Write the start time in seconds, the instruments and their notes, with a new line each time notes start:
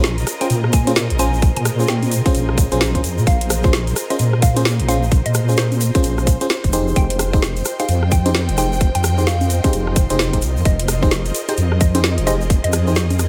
Already playing: wobble bass A#1, string section F4 G#4 A#4 D#5, ambient pad C5
0.03 snare, shaker
0.18 closed hi-hat, shaker
0.27 cross-stick, open hi-hat, shaker
0.41 fm electric piano C#4 F4 G#4 C5, synth pluck G5, closed hi-hat, shaker
0.50 wobble bass A#2, closed hi-hat, shaker
0.64 cross-stick
0.73 synth pluck G#5, kick, open hi-hat, shaker
0.87 fm electric piano C#4 F4 G#4 C5, closed hi-hat, high conga, shaker
0.96 snare, shaker
1.10 wobble bass A#1, closed hi-hat
1.19 fm electric piano C#4 F4 G#4 C5, synth pluck G#5, open hi-hat, shaker
1.34 shaker
1.42 kick, closed hi-hat, shaker
1.56 wobble bass A#2, synth pluck G#5, closed hi-hat
1.65 cross-stick, open hi-hat, shaker
1.80 fm electric piano C#4 F4 G#4 C5, shaker
1.88 synth pluck G5, snare, shaker
2.03 closed hi-hat, high conga, shaker
2.11 open hi-hat, shaker
2.26 fm electric piano C#4 F4 G#4 C5, kick, closed hi-hat, high conga, shaker
2.35 wobble bass A#1, closed hi-hat, shaker
2.49 cross-stick
2.58 kick, open hi-hat, shaker
2.72 wobble bass A#1, fm electric piano C#4 F4 G#4 C5, closed hi-hat, shaker
2.81 snare, shaker
2.95 wobble bass A#1, fm electric piano C#4 F4 G#4 C5, kick, closed hi-hat
3.04 wobble bass F2, open hi-hat, shaker
3.18 wobble bass A#2, shaker
3.27 wobble bass A#1, synth pluck F5, kick, closed hi-hat, shaker
3.41 closed hi-hat
3.50 cross-stick, open hi-hat, shaker
3.64 fm electric piano C#4 F4 G#4 C5, kick, shaker
3.73 snare, shaker
3.87 closed hi-hat, shaker
3.96 cross-stick, open hi-hat, shaker
4.10 fm electric piano C#4 F4 G#4 C5, synth pluck D#5, closed hi-hat, shaker
4.19 wobble bass A#2, closed hi-hat, shaker
4.33 cross-stick
4.42 synth pluck F5, kick, open hi-hat, shaker
4.56 fm electric piano C#4 F4 G#4 C5, closed hi-hat, high conga, shaker
4.65 snare, shaker
4.80 wobble bass A#1, closed hi-hat
4.88 fm electric piano C#4 F4 G#4 C5, synth pluck F5, open hi-hat, shaker
5.03 shaker
5.12 kick, closed hi-hat, shaker
5.26 wobble bass A#2, synth pluck D#5, closed hi-hat
5.34 cross-stick, open hi-hat, shaker
5.49 fm electric piano C#4 F4 G#4 C5, shaker
5.57 synth pluck C5, snare, shaker
5.72 closed hi-hat, high conga, shaker
5.81 open hi-hat, shaker
5.95 fm electric piano C#4 F4 G#4 C5, kick, closed hi-hat, high conga, shaker
6.03 wobble bass A#1, closed hi-hat, shaker
6.18 cross-stick, shaker
6.27 kick, open hi-hat, shaker
6.41 fm electric piano C#4 F4 G#4 C5, closed hi-hat, shaker
6.50 snare, shaker
6.64 wobble bass F1, kick, closed hi-hat, shaker
6.73 fm electric piano D#4 G4 G#4 C5, string section F4, open hi-hat, shaker
6.88 shaker
6.96 wobble bass F1, string section A#4, synth pluck G5, kick, closed hi-hat, shaker
7.10 closed hi-hat
7.18 string section D#5, cross-stick, open hi-hat, shaker
7.33 fm electric piano D#4 G4 G#4 C5, string section G5, kick, shaker
7.42 snare, shaker
7.56 closed hi-hat, shaker
7.65 cross-stick, open hi-hat, shaker
7.79 fm electric piano D#4 G4 G#4 C5, synth pluck F5, closed hi-hat, shaker
7.89 wobble bass F2, closed hi-hat, shaker
8.03 cross-stick
8.12 synth pluck G5, kick, open hi-hat, shaker
8.26 fm electric piano D#4 G4 G#4 C5, closed hi-hat, high conga, shaker
8.34 snare, shaker
8.49 wobble bass F1, closed hi-hat
8.57 fm electric piano D#4 G4 G#4 C5, synth pluck G5, open hi-hat, shaker
8.72 shaker
8.81 kick, closed hi-hat, shaker
8.95 wobble bass F2, synth pluck G5, closed hi-hat
9.04 cross-stick, open hi-hat, shaker
9.18 fm electric piano D#4 G4 G#4 C5, shaker
9.27 synth pluck F5, snare, shaker
9.41 closed hi-hat, high conga, shaker
9.50 open hi-hat, shaker
9.64 fm electric piano D#4 G4 G#4 C5, kick, closed hi-hat, high conga, shaker
9.73 wobble bass F1, closed hi-hat, shaker
9.87 cross-stick
9.96 kick, open hi-hat, shaker
10.10 wobble bass F1, fm electric piano D#4 G4 G#4 C5, closed hi-hat, shaker
10.19 snare, shaker
10.33 wobble bass F1, fm electric piano D#4 G4 G#4 C5, kick, closed hi-hat
10.42 wobble bass C2, open hi-hat, shaker
10.57 wobble bass F2, shaker
10.65 wobble bass F1, synth pluck D#5, kick, closed hi-hat, shaker
10.79 closed hi-hat
10.85 string section G#4, cross-stick, open hi-hat, shaker
11.02 fm electric piano D#4 G4 G#4 C5, kick, shaker
11.11 snare, shaker
11.25 closed hi-hat, shaker
11.35 open hi-hat, shaker
11.48 fm electric piano D#4 G4 G#4 C5, synth pluck C5, closed hi-hat, shaker
11.57 wobble bass F2, closed hi-hat, shaker
11.72 cross-stick
11.81 synth pluck D#5, kick, open hi-hat, shaker
11.95 fm electric piano D#4 G4 G#4 C5, closed hi-hat, high conga, shaker
12.04 snare, shaker
12.18 wobble bass F1, closed hi-hat
12.27 fm electric piano D#4 G4 G#4 C5, synth pluck D#5, open hi-hat, shaker
12.41 shaker
12.50 kick, closed hi-hat, shaker
12.64 wobble bass F2, synth pluck D#5, closed hi-hat
12.73 cross-stick, open hi-hat, shaker
12.87 fm electric piano D#4 G4 G#4 C5, shaker
12.96 synth pluck C5, snare, shaker
13.10 closed hi-hat, high conga, shaker
13.19 cross-stick, open hi-hat, shaker